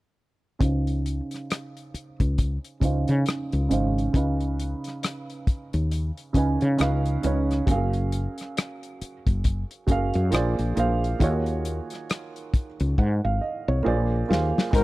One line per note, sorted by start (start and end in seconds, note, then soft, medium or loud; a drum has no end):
0.59 1.20 C#2 medium
0.59 2.05 C#3 medium
0.59 2.05 C#4 medium
0.59 2.06 D#4 medium
0.59 2.07 C5 medium
0.59 kick medium
0.59 closed hi-hat medium
0.64 2.08 F5 medium
0.87 closed hi-hat soft
1.06 closed hi-hat medium
1.31 cross-stick soft
1.31 closed hi-hat soft
1.50 cross-stick medium
1.50 closed hi-hat medium
1.77 closed hi-hat soft
1.94 muted fretless electric bass stroke soft
1.94 closed hi-hat soft
2.20 2.57 C#2 medium
2.20 kick medium
2.20 closed hi-hat soft
2.38 kick medium
2.38 closed hi-hat medium
2.65 closed hi-hat soft
2.80 3.04 C#2 medium
2.80 3.56 C#3 medium
2.80 3.56 C#4 medium
2.80 3.57 D#4 medium
2.80 3.58 C5 medium
2.80 kick medium
2.80 closed hi-hat medium
2.85 3.58 F5 medium
3.08 3.23 C#3 medium
3.08 closed hi-hat soft
3.26 cross-stick medium
3.26 closed hi-hat medium
3.52 3.68 C#2 medium
3.52 closed hi-hat soft
3.69 4.07 G#1 medium
3.69 4.07 C#3 medium
3.69 4.07 C#4 medium
3.69 4.08 D#4 medium
3.69 4.08 C5 medium
3.69 closed hi-hat medium
3.73 4.09 F5 medium
3.98 closed hi-hat soft
4.13 4.73 C#2 medium
4.13 5.58 C#3 medium
4.13 5.59 C#4 medium
4.13 5.60 D#4 medium
4.13 5.60 B4 medium
4.13 kick medium
4.13 closed hi-hat medium
4.18 5.61 F5 medium
4.41 closed hi-hat soft
4.60 closed hi-hat medium
4.84 cross-stick soft
4.84 closed hi-hat soft
5.03 cross-stick medium
5.03 closed hi-hat medium
5.30 closed hi-hat soft
5.47 muted fretless electric bass stroke soft
5.47 kick medium
5.47 closed hi-hat medium
5.73 6.10 D#2 medium
5.73 closed hi-hat soft
5.91 closed hi-hat medium
6.18 closed hi-hat soft
6.33 6.57 C#2 medium
6.33 6.76 C#3 medium
6.33 6.77 C#4 medium
6.33 6.78 D#4 medium
6.33 6.79 B4 medium
6.33 kick medium
6.33 closed hi-hat soft
6.38 6.80 G#5 medium
6.61 6.76 C#3 medium
6.61 closed hi-hat soft
6.77 7.16 C#2 medium
6.77 7.16 C#3 medium
6.77 7.16 C#4 medium
6.77 7.17 D#4 medium
6.77 7.17 B4 medium
6.77 cross-stick loud
6.77 closed hi-hat medium
6.82 7.18 F5 medium
7.06 closed hi-hat soft
7.22 7.60 C#2 medium
7.22 7.60 C#3 medium
7.22 7.61 C#4 medium
7.22 7.61 D#4 medium
7.22 7.62 B4 medium
7.22 closed hi-hat medium
7.27 7.62 C#5 medium
7.51 cross-stick soft
7.51 closed hi-hat soft
7.66 8.26 F#1 medium
7.66 9.12 F#3 medium
7.66 9.12 C#4 medium
7.66 9.13 G#4 medium
7.66 9.14 A#4 medium
7.66 kick medium
7.66 closed hi-hat medium
7.71 9.14 F5 medium
7.93 closed hi-hat soft
8.12 closed hi-hat medium
8.38 cross-stick soft
8.38 closed hi-hat soft
8.57 cross-stick loud
8.57 closed hi-hat medium
8.83 closed hi-hat soft
9.01 muted fretless electric bass stroke soft
9.01 closed hi-hat medium
9.27 9.63 F#1 medium
9.27 kick medium
9.27 closed hi-hat soft
9.44 kick medium
9.44 closed hi-hat medium
9.71 closed hi-hat soft
9.87 10.10 F#1 medium
9.87 10.31 F#3 medium
9.87 10.32 C#4 medium
9.87 10.31 G#4 medium
9.87 10.33 A#4 medium
9.87 kick medium
9.87 closed hi-hat medium
9.92 10.34 F5 medium
10.14 10.30 F#2 medium
10.14 closed hi-hat soft
10.30 10.54 A#1 medium
10.30 10.69 A#3 medium
10.30 10.69 F4 medium
10.30 10.70 G#4 medium
10.30 10.70 C5 medium
10.30 closed hi-hat medium
10.35 10.71 D5 medium
10.35 cross-stick loud
10.59 10.74 A#1 medium
10.59 closed hi-hat soft
10.75 11.13 A#1 medium
10.75 11.13 A#3 medium
10.75 11.13 F4 medium
10.75 11.14 G#4 medium
10.75 11.15 C5 medium
10.75 closed hi-hat medium
10.79 11.15 F5 medium
11.04 closed hi-hat soft
11.19 11.79 D#2 loud
11.19 12.65 D#3 medium
11.19 12.65 A#3 medium
11.19 12.65 F4 medium
11.19 12.66 F#4 medium
11.19 12.66 G#4 medium
11.19 kick medium
11.19 closed hi-hat medium
11.24 12.67 C#5 medium
11.46 closed hi-hat soft
11.65 closed hi-hat medium
11.90 cross-stick soft
11.90 closed hi-hat soft
12.10 cross-stick medium
12.10 closed hi-hat medium
12.36 closed hi-hat soft
12.54 muted fretless electric bass stroke soft
12.54 kick medium
12.54 closed hi-hat medium
12.80 12.95 C#2 medium
12.80 closed hi-hat soft
12.98 13.20 G#2 medium
12.98 13.23 F#5 soft
12.98 kick medium
13.25 13.39 G#1 medium
13.25 13.41 F5 medium
13.41 13.66 D#5 medium
13.68 13.82 C2 medium
13.68 14.10 C#5 medium
13.83 14.22 A#1 medium
13.83 14.21 A#3 medium
13.83 14.22 F4 medium
13.83 14.22 G#4 medium
13.83 14.23 C5 medium
13.88 14.24 D5 medium
14.28 14.52 D#2 medium
14.28 14.66 A#3 medium
14.28 14.67 F4 medium
14.28 14.67 G#4 medium
14.28 14.68 C5 medium
14.28 snare medium
14.33 14.68 F5 medium
14.58 snare medium
14.71 14.84 G#1 loud
14.71 14.84 C3 medium
14.71 14.84 G#3 medium
14.71 14.84 A#3 medium
14.71 14.84 D#4 medium
14.71 14.84 F#4 medium
14.71 14.84 A#4 medium
14.71 kick loud
14.71 closed hi-hat medium
14.75 14.84 A#4 medium
14.75 14.84 C5 medium